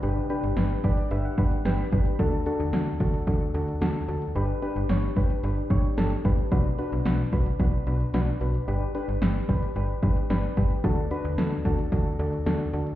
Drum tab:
HH |x-xxx-xxx-xxx-xx|x-xxx-xxx-xxx-xx|x-xxx-xxx-xxx-xx|x-xxx-xxx-xxx-xx|
SD |----o-------o---|----o-------o---|----o-------o---|----o-------o---|
BD |------o---o---o-|o-----o-o-------|------o---o---o-|o-----o-o-------|

HH |x-xxx-xxx-xxx-xx|x-xxx-xxx-xxx-xx|
SD |----o-------o---|----o-------o---|
BD |------o---o---o-|o-----o-o-------|